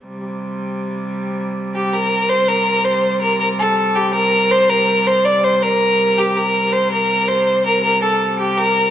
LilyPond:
<<
  \new Staff \with { instrumentName = "Fiddle" } { \time 6/8 \key g \minor \tempo 4. = 108 r2. | r4. g'8 bes'4 | c''8 bes'4 c''4 bes'8 | bes'8 a'4 g'8 bes'4 |
c''8 bes'4 c''8 d''8 c''8 | bes'4. g'8 bes'4 | c''8 bes'4 c''4 bes'8 | bes'8 a'4 g'8 bes'4 | }
  \new Staff \with { instrumentName = "Hurdy-gurdy" } { \clef bass \time 6/8 \key g \minor <c g>2.~ | <c g>2. | <c g>2.~ | <c g>2.~ |
<c g>2.~ | <c g>2. | <c g>2.~ | <c g>2. | }
>>